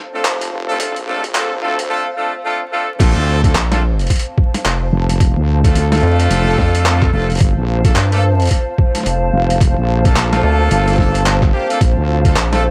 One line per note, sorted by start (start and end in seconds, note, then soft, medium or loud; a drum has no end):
0.00 1.90 C5 medium
0.00 1.90 F5 medium
0.00 1.90 A5 medium
0.14 0.23 A3 medium
0.14 0.23 C4 medium
0.14 0.23 D4 medium
0.14 0.23 F4 medium
0.14 0.23 A4 medium
0.25 0.50 F1 loud
0.25 clap loud
0.25 closed hi-hat medium
0.41 closed hi-hat medium
0.52 0.94 F1 medium
0.69 0.78 A3 medium
0.69 0.78 C4 medium
0.69 0.78 D4 medium
0.69 0.78 F4 medium
0.69 0.78 A4 medium
0.80 0.96 A3 medium
0.80 0.96 C4 medium
0.80 0.96 D4 medium
0.80 0.96 F4 medium
0.80 0.96 A4 medium
0.80 kick loud
0.80 closed hi-hat medium
0.96 1.33 A#1 loud
0.96 closed hi-hat soft
1.07 1.24 A3 medium
1.07 1.24 C4 medium
1.07 1.24 D4 medium
1.07 1.24 F4 medium
1.07 1.24 A4 medium
1.24 kick loud
1.24 closed hi-hat soft
1.35 1.61 A#1 medium
1.35 1.51 A3 medium
1.35 1.51 C4 medium
1.35 1.51 D4 medium
1.35 1.51 F4 medium
1.35 1.51 A4 medium
1.35 clap loud
1.35 closed hi-hat medium
1.62 1.88 D2 medium
1.62 1.79 A3 medium
1.62 1.79 C4 medium
1.62 1.78 D4 medium
1.62 1.79 F4 medium
1.62 1.79 A4 medium
1.79 closed hi-hat medium
1.90 2.06 A3 medium
1.90 2.06 C4 medium
1.90 2.06 D4 medium
1.90 2.06 F4 medium
1.90 2.06 A4 medium
2.17 2.34 A3 medium
2.17 2.34 C4 medium
2.17 2.34 D4 medium
2.17 2.34 F4 medium
2.17 2.34 A4 medium
2.45 2.61 A3 medium
2.45 2.61 C4 medium
2.45 2.61 D4 medium
2.45 2.61 F4 medium
2.45 2.61 A4 medium
2.72 2.89 A3 medium
2.72 2.89 C4 medium
2.72 2.89 D4 medium
2.72 2.89 F4 medium
2.72 2.89 A4 medium
3.00 3.14 A#1 medium
3.00 3.37 A3 loud
3.00 3.37 C4 loud
3.00 3.37 D4 loud
3.00 3.37 F4 medium
3.00 3.37 A4 loud
3.00 12.71 C5 medium
3.00 kick loud
3.00 closed hi-hat medium
3.00 crash loud
3.16 3.53 D2 loud
3.44 3.55 A3 medium
3.44 3.55 C4 medium
3.44 3.55 D4 medium
3.44 3.55 F4 medium
3.44 3.55 A4 medium
3.44 12.71 F5 medium
3.44 12.71 A5 medium
3.44 kick loud
3.44 closed hi-hat medium
3.55 4.08 A#1 loud
3.55 clap loud
3.55 closed hi-hat medium
3.71 3.82 A3 medium
3.71 3.82 C4 medium
3.71 3.82 D4 medium
3.71 3.82 F4 medium
3.71 3.82 A4 medium
3.71 snare medium
3.71 closed hi-hat soft
3.99 closed hi-hat soft
4.01 closed hi-hat soft
4.07 kick medium
4.07 closed hi-hat soft
4.10 closed hi-hat medium
4.16 closed hi-hat soft
4.19 closed hi-hat soft
4.38 kick loud
4.54 snare soft
4.54 closed hi-hat medium
4.65 4.91 F1 loud
4.65 clap loud
4.65 closed hi-hat medium
4.92 5.34 F1 loud
5.09 closed hi-hat medium
5.20 kick loud
5.20 closed hi-hat medium
5.37 5.74 D2 medium
5.64 5.85 A3 medium
5.64 5.85 C4 medium
5.64 5.85 D4 medium
5.64 5.85 F4 medium
5.64 5.85 A4 medium
5.64 kick loud
5.64 closed hi-hat medium
5.75 6.01 D2 loud
5.75 closed hi-hat medium
5.92 7.10 A3 loud
5.92 7.10 C4 medium
5.92 7.10 D4 medium
5.92 7.10 F4 medium
5.92 7.10 A4 loud
5.92 snare medium
5.92 closed hi-hat soft
5.95 closed hi-hat soft
5.98 closed hi-hat soft
6.00 6.29 F2 loud
6.00 closed hi-hat soft
6.07 closed hi-hat soft
6.11 closed hi-hat soft
6.16 closed hi-hat soft
6.20 closed hi-hat medium
6.30 6.56 F1 loud
6.30 closed hi-hat medium
6.58 7.11 F2 loud
6.58 kick medium
6.58 snare soft
6.75 closed hi-hat medium
6.86 clap loud
6.86 closed hi-hat medium
7.02 kick loud
7.02 clap soft
7.13 7.39 F1 loud
7.13 7.29 A3 medium
7.13 7.29 C4 medium
7.13 7.29 D4 medium
7.13 7.29 F4 medium
7.13 7.29 A4 medium
7.30 closed hi-hat soft
7.32 closed hi-hat soft
7.35 closed hi-hat soft
7.37 closed hi-hat soft
7.39 7.54 G1 medium
7.39 closed hi-hat soft
7.41 kick loud
7.41 closed hi-hat medium
7.57 7.94 A#1 loud
7.85 7.95 A3 medium
7.85 7.95 A#3 medium
7.85 7.95 D4 medium
7.85 7.95 F4 medium
7.85 7.95 A4 medium
7.85 kick loud
7.85 closed hi-hat medium
7.96 8.49 G2 loud
7.96 clap loud
7.96 closed hi-hat medium
8.12 8.23 A3 medium
8.12 8.23 A#3 medium
8.12 8.23 D4 medium
8.12 8.23 F4 medium
8.12 8.23 A4 loud
8.12 closed hi-hat soft
8.40 closed hi-hat soft
8.42 closed hi-hat soft
8.45 closed hi-hat soft
8.47 closed hi-hat soft
8.49 closed hi-hat soft
8.51 kick medium
8.51 closed hi-hat medium
8.78 kick loud
8.95 snare soft
8.95 closed hi-hat medium
8.98 snare soft
9.00 snare soft
9.03 9.32 F1 loud
9.03 snare soft
9.03 closed hi-hat medium
9.33 9.75 F1 loud
9.50 closed hi-hat medium
9.61 kick loud
9.61 closed hi-hat medium
9.77 10.14 A#1 loud
10.05 10.25 A3 medium
10.05 10.25 A#3 medium
10.05 10.25 D4 medium
10.05 10.25 F4 medium
10.05 10.25 A4 medium
10.05 kick loud
10.05 closed hi-hat soft
10.16 10.42 A#1 medium
10.16 clap loud
10.16 closed hi-hat medium
10.32 10.96 A3 loud
10.32 10.96 A#3 medium
10.32 10.96 D4 medium
10.32 10.96 F4 medium
10.32 10.96 A4 loud
10.32 snare medium
10.32 closed hi-hat soft
10.44 10.69 D2 loud
10.71 11.52 G1 loud
10.71 closed hi-hat medium
10.88 closed hi-hat soft
10.90 closed hi-hat soft
10.93 closed hi-hat soft
10.96 11.21 A3 medium
10.96 11.21 A#3 medium
10.96 11.21 D4 medium
10.96 11.21 F4 medium
10.96 11.21 A4 loud
10.96 kick medium
10.96 snare soft
10.96 closed hi-hat soft
11.15 closed hi-hat medium
11.26 clap loud
11.26 closed hi-hat medium
11.42 kick loud
11.42 clap soft
11.53 11.66 G3 medium
11.53 11.66 A#3 medium
11.53 11.66 D4 medium
11.53 11.66 F4 medium
11.53 11.66 G4 medium
11.70 11.79 A3 loud
11.70 11.79 A#3 medium
11.70 11.79 D4 medium
11.70 11.79 F4 medium
11.70 11.79 A4 loud
11.70 closed hi-hat medium
11.81 11.95 A#1 medium
11.81 kick loud
11.81 closed hi-hat medium
11.97 12.34 D2 loud
12.25 12.36 A3 medium
12.25 12.36 C4 medium
12.25 12.36 D4 medium
12.25 12.36 F4 medium
12.25 12.36 A4 medium
12.25 kick loud
12.25 closed hi-hat soft
12.36 12.71 A#1 loud
12.36 clap loud
12.36 closed hi-hat medium
12.52 12.63 A3 medium
12.52 12.63 C4 medium
12.52 12.63 D4 medium
12.52 12.63 F4 medium
12.52 12.63 A4 loud
12.52 snare medium
12.52 closed hi-hat soft